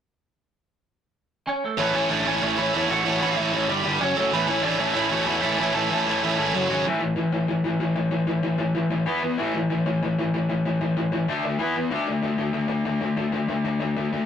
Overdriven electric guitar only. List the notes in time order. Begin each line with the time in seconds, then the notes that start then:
1.77 A2 E3 A3
1.94 A2 E3 A3
2.09 A2 E3 A3
2.25 A2 E3 A3
2.41 A2 E3 A3
2.57 A2 E3 A3
2.73 A2 E3 A3
2.88 A2 E3 A3
3.05 A2 E3 A3
3.21 A2 E3 A3
3.35 A2 E3 A3
3.52 A2 E3 A3
3.68 G2 D3 G3
3.83 G2 D3 G3
3.99 F#2 C#3 F#3
4.15 F#2 C#3 F#3
4.31 A2 E3 A3
4.47 A2 E3 A3
4.63 A2 E3 A3
4.79 A2 E3 A3
4.94 A2 E3 A3
5.10 A2 E3 A3
5.27 A2 E3 A3
5.42 A2 E3 A3
5.58 A2 E3 A3
5.74 A2 E3 A3
5.90 A2 E3 A3
6.06 A2 E3 A3
6.22 A2 E3 A3
6.38 A2 E3 A3
6.53 F#2 C#3 F#3
6.69 F#2 C#3 F#3